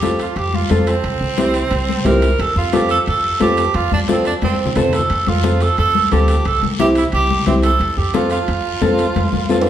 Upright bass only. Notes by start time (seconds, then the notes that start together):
Already playing: F2
0.36 F2
0.70 F2
1.04 C2
1.21 C2
1.71 C2
2.05 C2
2.39 F2
2.56 F2
3.07 F2
3.41 F2
3.74 F2
3.92 F2
4.42 F2
4.76 F2
5.10 F2
5.27 F2
5.78 F2
6.12 D2
6.46 C2
6.63 C2
7.13 C2
7.47 C2
7.80 F2
7.97 F2
8.48 F2
8.82 F2
9.16 F2
9.33 F2